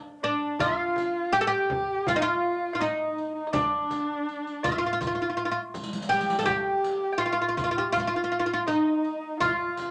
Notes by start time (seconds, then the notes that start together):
0.23 D4 D5, riq
0.59 F4 F5, riq, frame drum
0.66 D#4
0.73 F4
0.96 riq, frame drum
1.33 G4 G5, riq
1.41 A4
1.47 G4 G5
1.70 frame drum
2.06 F4 F5, riq, frame drum
2.16 D#4
2.21 F4 F5
2.26 riq
2.73 F4 F5
2.79 D#4 D#5, riq, frame drum
3.18 riq
3.35 D#4
3.47 D#5
3.53 D4 D5, riq, frame drum
3.90 riq, frame drum
4.28 riq
4.47 riq
4.63 F4 F5, riq, frame drum
4.72 F4
4.78 F4
4.83 F4, riq
4.93 F4
5.01 F4, riq, frame drum
5.07 F4
5.15 F4
5.20 F4, riq
5.30 F4
5.37 F4
5.45 F4
5.51 F4
5.74 riq, frame drum
5.83 riq
5.93 riq
6.02 riq
6.09 G4 G5, riq
6.21 riq
6.30 riq
6.39 A4, riq
6.46 G4 G5, riq, frame drum
6.84 riq
7.13 G5
7.18 F4 F5
7.22 F4, riq
7.33 F4
7.42 F4
7.49 F4
7.57 F4, riq, frame drum
7.64 F4
7.71 F4
7.77 F4 G4
7.87 G4
7.92 F4 F5, riq, frame drum
8.00 F4
8.07 F4
8.13 F4, riq
8.24 F4
8.32 F4
8.39 F4
8.46 F4
8.53 F4
8.67 D#4 D#5, riq, frame drum
9.04 riq
9.40 F4 F5, riq, frame drum
9.77 riq, frame drum